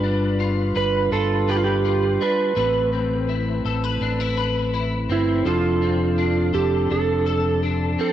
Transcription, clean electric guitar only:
0, 0, Header, 1, 2, 480
1, 0, Start_track
1, 0, Tempo, 722892
1, 1703, Time_signature, 4, 2, 24, 8
1, 5396, End_track
2, 0, Start_track
2, 0, Title_t, "Clean electric guitar"
2, 0, Program_c, 0, 27
2, 0, Note_on_c, 0, 65, 51
2, 0, Note_on_c, 0, 71, 59
2, 23, Note_on_c, 0, 62, 51
2, 264, Note_off_c, 0, 65, 0
2, 266, Note_on_c, 0, 65, 51
2, 501, Note_off_c, 0, 71, 0
2, 504, Note_on_c, 0, 71, 60
2, 738, Note_off_c, 0, 65, 0
2, 746, Note_on_c, 0, 65, 59
2, 985, Note_off_c, 0, 71, 0
2, 987, Note_on_c, 0, 71, 61
2, 1220, Note_off_c, 0, 65, 0
2, 1228, Note_on_c, 0, 65, 54
2, 1460, Note_off_c, 0, 62, 0
2, 1468, Note_on_c, 0, 62, 57
2, 1703, Note_off_c, 0, 71, 0
2, 1703, Note_on_c, 0, 57, 71
2, 1706, Note_on_c, 0, 71, 64
2, 1753, Note_off_c, 0, 62, 0
2, 1753, Note_off_c, 0, 65, 0
2, 1945, Note_on_c, 0, 60, 50
2, 2183, Note_on_c, 0, 64, 55
2, 2424, Note_off_c, 0, 71, 0
2, 2427, Note_on_c, 0, 69, 55
2, 2548, Note_off_c, 0, 69, 0
2, 2548, Note_on_c, 0, 71, 53
2, 2663, Note_off_c, 0, 64, 0
2, 2669, Note_on_c, 0, 62, 52
2, 2788, Note_off_c, 0, 62, 0
2, 2788, Note_on_c, 0, 64, 43
2, 2897, Note_off_c, 0, 71, 0
2, 2905, Note_on_c, 0, 71, 57
2, 3137, Note_off_c, 0, 64, 0
2, 3145, Note_on_c, 0, 64, 50
2, 3381, Note_off_c, 0, 60, 0
2, 3383, Note_on_c, 0, 60, 49
2, 3620, Note_off_c, 0, 57, 0
2, 3623, Note_on_c, 0, 53, 64
2, 3624, Note_off_c, 0, 71, 0
2, 3626, Note_on_c, 0, 69, 54
2, 3672, Note_off_c, 0, 64, 0
2, 3862, Note_off_c, 0, 60, 0
2, 3864, Note_on_c, 0, 60, 49
2, 4103, Note_on_c, 0, 62, 56
2, 4333, Note_off_c, 0, 69, 0
2, 4341, Note_on_c, 0, 69, 57
2, 4584, Note_off_c, 0, 62, 0
2, 4586, Note_on_c, 0, 62, 52
2, 4816, Note_off_c, 0, 69, 0
2, 4824, Note_on_c, 0, 69, 58
2, 5065, Note_off_c, 0, 62, 0
2, 5067, Note_on_c, 0, 62, 54
2, 5297, Note_off_c, 0, 60, 0
2, 5305, Note_on_c, 0, 60, 54
2, 5396, Note_off_c, 0, 53, 0
2, 5396, Note_off_c, 0, 60, 0
2, 5396, Note_off_c, 0, 62, 0
2, 5396, Note_off_c, 0, 69, 0
2, 5396, End_track
0, 0, End_of_file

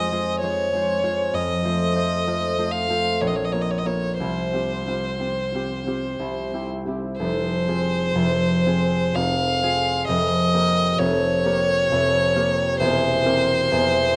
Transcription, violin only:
0, 0, Header, 1, 2, 480
1, 0, Start_track
1, 0, Key_signature, -4, "minor"
1, 0, Tempo, 917431
1, 697, Time_signature, 3, 2, 24, 8
1, 1665, Tempo, 1005025
1, 3585, Tempo, 977199
1, 4545, Tempo, 910470
1, 7183, End_track
2, 0, Start_track
2, 0, Title_t, "Violin"
2, 0, Program_c, 0, 40
2, 0, Note_on_c, 0, 75, 71
2, 214, Note_off_c, 0, 75, 0
2, 217, Note_on_c, 0, 73, 67
2, 703, Note_on_c, 0, 75, 63
2, 710, Note_off_c, 0, 73, 0
2, 1422, Note_on_c, 0, 77, 67
2, 1430, Note_off_c, 0, 75, 0
2, 1678, Note_on_c, 0, 73, 46
2, 1685, Note_off_c, 0, 77, 0
2, 1707, Note_on_c, 0, 75, 47
2, 1714, Note_off_c, 0, 73, 0
2, 1749, Note_on_c, 0, 73, 47
2, 1756, Note_off_c, 0, 75, 0
2, 1791, Note_on_c, 0, 75, 47
2, 1798, Note_off_c, 0, 73, 0
2, 1827, Note_on_c, 0, 73, 48
2, 1834, Note_off_c, 0, 75, 0
2, 1871, Note_on_c, 0, 75, 47
2, 1879, Note_off_c, 0, 73, 0
2, 1917, Note_on_c, 0, 73, 46
2, 1924, Note_off_c, 0, 75, 0
2, 1952, Note_on_c, 0, 75, 47
2, 1959, Note_off_c, 0, 73, 0
2, 1991, Note_on_c, 0, 73, 54
2, 1998, Note_off_c, 0, 75, 0
2, 2139, Note_off_c, 0, 73, 0
2, 2143, Note_on_c, 0, 72, 58
2, 3333, Note_off_c, 0, 72, 0
2, 3579, Note_on_c, 0, 72, 70
2, 4540, Note_on_c, 0, 77, 77
2, 4548, Note_off_c, 0, 72, 0
2, 5028, Note_off_c, 0, 77, 0
2, 5031, Note_on_c, 0, 75, 76
2, 5512, Note_on_c, 0, 73, 87
2, 5519, Note_off_c, 0, 75, 0
2, 6459, Note_off_c, 0, 73, 0
2, 6463, Note_on_c, 0, 72, 97
2, 7183, Note_off_c, 0, 72, 0
2, 7183, End_track
0, 0, End_of_file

